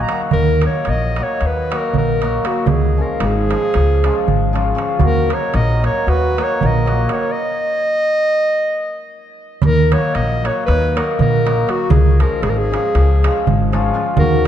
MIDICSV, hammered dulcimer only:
0, 0, Header, 1, 2, 480
1, 0, Start_track
1, 0, Key_signature, -6, "minor"
1, 0, Tempo, 517688
1, 305, Time_signature, 9, 3, 24, 8
1, 7502, Tempo, 506329
1, 13555, End_track
2, 0, Start_track
2, 0, Title_t, "Hammered dulcimer"
2, 0, Program_c, 0, 15
2, 82, Note_on_c, 0, 54, 68
2, 94, Note_on_c, 0, 58, 54
2, 96, Note_on_c, 0, 63, 50
2, 104, Note_on_c, 0, 66, 70
2, 272, Note_off_c, 0, 58, 0
2, 272, Note_off_c, 0, 63, 0
2, 276, Note_off_c, 0, 66, 0
2, 351, Note_off_c, 0, 54, 0
2, 590, Note_on_c, 0, 54, 58
2, 595, Note_on_c, 0, 58, 59
2, 601, Note_on_c, 0, 63, 48
2, 601, Note_on_c, 0, 66, 54
2, 776, Note_off_c, 0, 58, 0
2, 779, Note_off_c, 0, 66, 0
2, 780, Note_off_c, 0, 63, 0
2, 1081, Note_off_c, 0, 54, 0
2, 1092, Note_on_c, 0, 54, 56
2, 1098, Note_on_c, 0, 58, 54
2, 1102, Note_on_c, 0, 63, 53
2, 1111, Note_on_c, 0, 66, 66
2, 1279, Note_off_c, 0, 58, 0
2, 1281, Note_off_c, 0, 63, 0
2, 1285, Note_off_c, 0, 66, 0
2, 1567, Note_off_c, 0, 54, 0
2, 1578, Note_on_c, 0, 54, 78
2, 1587, Note_on_c, 0, 58, 65
2, 1594, Note_on_c, 0, 63, 71
2, 1598, Note_on_c, 0, 66, 73
2, 1774, Note_off_c, 0, 58, 0
2, 1778, Note_off_c, 0, 63, 0
2, 1779, Note_off_c, 0, 66, 0
2, 2054, Note_off_c, 0, 54, 0
2, 2066, Note_on_c, 0, 54, 63
2, 2070, Note_on_c, 0, 58, 65
2, 2071, Note_on_c, 0, 63, 65
2, 2079, Note_on_c, 0, 66, 84
2, 2242, Note_off_c, 0, 58, 0
2, 2242, Note_off_c, 0, 63, 0
2, 2246, Note_off_c, 0, 66, 0
2, 2248, Note_off_c, 0, 54, 0
2, 2258, Note_on_c, 0, 54, 63
2, 2261, Note_on_c, 0, 58, 58
2, 2268, Note_on_c, 0, 63, 66
2, 2274, Note_on_c, 0, 66, 69
2, 2441, Note_off_c, 0, 58, 0
2, 2445, Note_off_c, 0, 63, 0
2, 2447, Note_off_c, 0, 66, 0
2, 2525, Note_off_c, 0, 54, 0
2, 2755, Note_on_c, 0, 53, 60
2, 2759, Note_on_c, 0, 56, 48
2, 2763, Note_on_c, 0, 61, 58
2, 2778, Note_on_c, 0, 65, 64
2, 2945, Note_off_c, 0, 61, 0
2, 2952, Note_off_c, 0, 65, 0
2, 3231, Note_off_c, 0, 53, 0
2, 3239, Note_off_c, 0, 56, 0
2, 3242, Note_on_c, 0, 53, 60
2, 3250, Note_on_c, 0, 56, 57
2, 3260, Note_on_c, 0, 61, 46
2, 3269, Note_on_c, 0, 65, 70
2, 3443, Note_off_c, 0, 61, 0
2, 3447, Note_off_c, 0, 65, 0
2, 3731, Note_off_c, 0, 53, 0
2, 3738, Note_off_c, 0, 56, 0
2, 3743, Note_on_c, 0, 53, 81
2, 3749, Note_on_c, 0, 56, 79
2, 3756, Note_on_c, 0, 61, 66
2, 3761, Note_on_c, 0, 65, 88
2, 3940, Note_off_c, 0, 61, 0
2, 3942, Note_off_c, 0, 65, 0
2, 4188, Note_off_c, 0, 53, 0
2, 4191, Note_off_c, 0, 56, 0
2, 4199, Note_on_c, 0, 53, 82
2, 4203, Note_on_c, 0, 56, 78
2, 4215, Note_on_c, 0, 61, 74
2, 4219, Note_on_c, 0, 65, 93
2, 4392, Note_off_c, 0, 53, 0
2, 4395, Note_off_c, 0, 61, 0
2, 4396, Note_off_c, 0, 65, 0
2, 4401, Note_off_c, 0, 56, 0
2, 4403, Note_on_c, 0, 53, 87
2, 4412, Note_on_c, 0, 56, 63
2, 4413, Note_on_c, 0, 61, 72
2, 4423, Note_on_c, 0, 65, 79
2, 4597, Note_off_c, 0, 61, 0
2, 4602, Note_off_c, 0, 65, 0
2, 4685, Note_off_c, 0, 53, 0
2, 4685, Note_off_c, 0, 56, 0
2, 4887, Note_on_c, 0, 54, 70
2, 4899, Note_on_c, 0, 63, 59
2, 4902, Note_on_c, 0, 58, 46
2, 4904, Note_on_c, 0, 66, 68
2, 5091, Note_off_c, 0, 63, 0
2, 5092, Note_off_c, 0, 58, 0
2, 5094, Note_off_c, 0, 66, 0
2, 5378, Note_off_c, 0, 54, 0
2, 5389, Note_on_c, 0, 54, 60
2, 5397, Note_on_c, 0, 58, 55
2, 5404, Note_on_c, 0, 63, 57
2, 5404, Note_on_c, 0, 66, 64
2, 5588, Note_off_c, 0, 58, 0
2, 5591, Note_off_c, 0, 63, 0
2, 5591, Note_off_c, 0, 66, 0
2, 5890, Note_off_c, 0, 54, 0
2, 5901, Note_on_c, 0, 54, 63
2, 5910, Note_on_c, 0, 58, 60
2, 5914, Note_on_c, 0, 63, 63
2, 5923, Note_on_c, 0, 66, 87
2, 6092, Note_off_c, 0, 58, 0
2, 6094, Note_off_c, 0, 63, 0
2, 6099, Note_off_c, 0, 66, 0
2, 6348, Note_off_c, 0, 54, 0
2, 6359, Note_on_c, 0, 54, 71
2, 6360, Note_on_c, 0, 58, 69
2, 6364, Note_on_c, 0, 63, 63
2, 6376, Note_on_c, 0, 66, 81
2, 6541, Note_off_c, 0, 58, 0
2, 6543, Note_off_c, 0, 63, 0
2, 6549, Note_off_c, 0, 66, 0
2, 6565, Note_off_c, 0, 54, 0
2, 6576, Note_on_c, 0, 54, 61
2, 6576, Note_on_c, 0, 58, 58
2, 6582, Note_on_c, 0, 63, 64
2, 6591, Note_on_c, 0, 66, 70
2, 6751, Note_off_c, 0, 58, 0
2, 6755, Note_off_c, 0, 63, 0
2, 6759, Note_off_c, 0, 66, 0
2, 6832, Note_off_c, 0, 54, 0
2, 9225, Note_on_c, 0, 54, 62
2, 9230, Note_on_c, 0, 58, 67
2, 9230, Note_on_c, 0, 63, 53
2, 9243, Note_on_c, 0, 66, 78
2, 9416, Note_off_c, 0, 58, 0
2, 9416, Note_off_c, 0, 63, 0
2, 9422, Note_off_c, 0, 66, 0
2, 9710, Note_off_c, 0, 54, 0
2, 9722, Note_on_c, 0, 54, 60
2, 9733, Note_on_c, 0, 58, 51
2, 9739, Note_on_c, 0, 63, 55
2, 9741, Note_on_c, 0, 66, 81
2, 9917, Note_off_c, 0, 58, 0
2, 9920, Note_off_c, 0, 63, 0
2, 9921, Note_off_c, 0, 66, 0
2, 10203, Note_off_c, 0, 54, 0
2, 10214, Note_on_c, 0, 54, 68
2, 10219, Note_on_c, 0, 58, 62
2, 10231, Note_on_c, 0, 63, 73
2, 10235, Note_on_c, 0, 66, 74
2, 10409, Note_off_c, 0, 58, 0
2, 10415, Note_off_c, 0, 63, 0
2, 10417, Note_off_c, 0, 66, 0
2, 10677, Note_off_c, 0, 54, 0
2, 10688, Note_on_c, 0, 54, 69
2, 10691, Note_on_c, 0, 58, 77
2, 10698, Note_on_c, 0, 63, 72
2, 10702, Note_on_c, 0, 66, 74
2, 10871, Note_off_c, 0, 58, 0
2, 10875, Note_off_c, 0, 63, 0
2, 10876, Note_off_c, 0, 66, 0
2, 10882, Note_off_c, 0, 54, 0
2, 10893, Note_on_c, 0, 54, 58
2, 10895, Note_on_c, 0, 58, 61
2, 10897, Note_on_c, 0, 63, 63
2, 10909, Note_on_c, 0, 66, 75
2, 11076, Note_off_c, 0, 58, 0
2, 11077, Note_off_c, 0, 63, 0
2, 11083, Note_off_c, 0, 66, 0
2, 11163, Note_off_c, 0, 54, 0
2, 11392, Note_on_c, 0, 53, 65
2, 11400, Note_on_c, 0, 56, 54
2, 11402, Note_on_c, 0, 61, 52
2, 11410, Note_on_c, 0, 65, 60
2, 11581, Note_off_c, 0, 61, 0
2, 11585, Note_off_c, 0, 65, 0
2, 11864, Note_off_c, 0, 53, 0
2, 11873, Note_off_c, 0, 56, 0
2, 11875, Note_on_c, 0, 53, 55
2, 11883, Note_on_c, 0, 61, 56
2, 11884, Note_on_c, 0, 56, 57
2, 11894, Note_on_c, 0, 65, 72
2, 12069, Note_off_c, 0, 61, 0
2, 12075, Note_off_c, 0, 65, 0
2, 12361, Note_off_c, 0, 53, 0
2, 12372, Note_on_c, 0, 53, 67
2, 12373, Note_off_c, 0, 56, 0
2, 12385, Note_on_c, 0, 56, 66
2, 12391, Note_on_c, 0, 65, 85
2, 12392, Note_on_c, 0, 61, 58
2, 12571, Note_off_c, 0, 65, 0
2, 12572, Note_off_c, 0, 61, 0
2, 12830, Note_off_c, 0, 53, 0
2, 12834, Note_off_c, 0, 56, 0
2, 12841, Note_on_c, 0, 53, 93
2, 12845, Note_on_c, 0, 56, 77
2, 12852, Note_on_c, 0, 61, 85
2, 12860, Note_on_c, 0, 65, 104
2, 13025, Note_off_c, 0, 61, 0
2, 13029, Note_off_c, 0, 65, 0
2, 13035, Note_off_c, 0, 53, 0
2, 13035, Note_off_c, 0, 56, 0
2, 13046, Note_on_c, 0, 53, 73
2, 13047, Note_on_c, 0, 56, 76
2, 13055, Note_on_c, 0, 61, 74
2, 13063, Note_on_c, 0, 65, 86
2, 13229, Note_off_c, 0, 61, 0
2, 13233, Note_off_c, 0, 65, 0
2, 13309, Note_off_c, 0, 53, 0
2, 13309, Note_off_c, 0, 56, 0
2, 13555, End_track
0, 0, End_of_file